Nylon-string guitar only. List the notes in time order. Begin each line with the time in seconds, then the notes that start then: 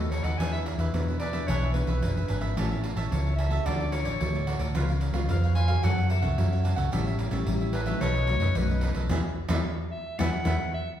Already playing: D#3 A3 B3 F#4
0.39 E3 B3 D4 G#4
0.78 B3 D4 G#4
0.94 B2 B3 D4 G#4
1.33 B3 D4 G#4
1.48 E3
1.74 B3 D4 G#4
2.02 B2 B3 D4 G#4
2.56 A3 C#4 E4 G#4
2.95 C#4 E4 G#4
3.11 E3
3.50 C#4 F#4 A4
3.66 D3
3.92 C#4 F#4 A4
4.20 A2 C#4 F#4 A4
4.74 C#3 G#3 B3 F4
5.14 G#3 B3 F4
5.30 G#2
5.69 C#4 F#4 A4
5.84 F#3
6.10 C#4 F#4 A4
6.38 C#3 C#4 F#4 A4
6.92 A2 G3 C#4 E4
7.32 G3 C#4 E4
7.48 E3 G3 C#4 E4
7.87 F#3 A3 D#4
8.03 B2
8.28 F#3 A3 D#4
8.56 F#2 F#3 A3 D#4
9.10 G#3 B3 E4
9.49 G#3 B3 E4
10.19 G#3 B3 E4
10.45 G#3 B3 E4